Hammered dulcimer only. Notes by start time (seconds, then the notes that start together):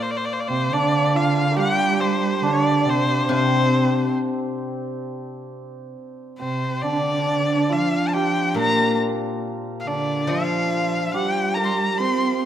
Already playing: A#3 C4
0.49 C4
0.73 D4
1.15 F4
1.51 A#4
1.55 G4
2.43 D4
2.85 C4
3.31 C4
3.39 C4
3.48 C4
3.55 C4
3.64 C4
3.71 C4
3.78 C4
3.84 C4
3.92 C4
4.01 C4
4.07 C4
6.40 C4
6.83 D4
6.92 D4
6.99 D4
7.03 D4
7.12 D4
7.19 D4
7.27 D4
7.35 D4
7.42 D4
7.50 D4
7.56 D4
7.70 F4
8.14 G4
8.56 A#4
9.87 D4
10.29 F4
11.14 G4
11.56 A#4
12.00 C5